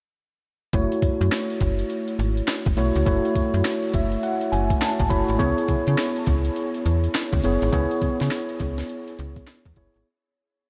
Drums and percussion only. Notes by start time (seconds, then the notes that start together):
0.73 kick, closed hi-hat
0.92 closed hi-hat
1.02 kick, closed hi-hat
1.21 closed hi-hat
1.32 snare, clap, closed hi-hat
1.50 closed hi-hat
1.60 kick, closed hi-hat
1.79 closed hi-hat
1.90 closed hi-hat
2.08 closed hi-hat
2.19 closed hi-hat
2.37 closed hi-hat
2.48 snare, clap, closed hi-hat
2.66 kick, closed hi-hat
2.77 closed hi-hat
2.95 closed hi-hat
3.06 kick, closed hi-hat
3.25 closed hi-hat
3.35 kick, closed hi-hat
3.54 closed hi-hat
3.65 snare, clap, closed hi-hat
3.83 closed hi-hat
3.94 kick, closed hi-hat
4.12 closed hi-hat
4.23 closed hi-hat
4.41 closed hi-hat
4.53 closed hi-hat
4.70 kick, closed hi-hat
4.81 snare, clap, closed hi-hat
4.99 kick, closed hi-hat
5.10 kick, closed hi-hat
5.29 closed hi-hat
5.39 kick, closed hi-hat
5.58 closed hi-hat
5.68 kick, closed hi-hat
5.87 closed hi-hat
5.98 snare, clap, closed hi-hat
6.16 closed hi-hat
6.26 kick, closed hi-hat
6.45 closed hi-hat
6.56 closed hi-hat
6.74 closed hi-hat
6.86 closed hi-hat
7.04 closed hi-hat
7.14 snare, clap, closed hi-hat
7.32 kick, closed hi-hat
7.44 closed hi-hat
7.62 closed hi-hat
7.72 kick, closed hi-hat
7.91 closed hi-hat
8.02 kick, closed hi-hat
8.20 snare, closed hi-hat
8.31 snare, clap, closed hi-hat
8.49 closed hi-hat
8.60 kick, closed hi-hat
8.78 snare, closed hi-hat
8.89 closed hi-hat
9.08 closed hi-hat
9.19 closed hi-hat
9.36 kick, closed hi-hat
9.47 snare, clap, closed hi-hat
9.65 kick, closed hi-hat
9.76 kick, closed hi-hat
9.94 closed hi-hat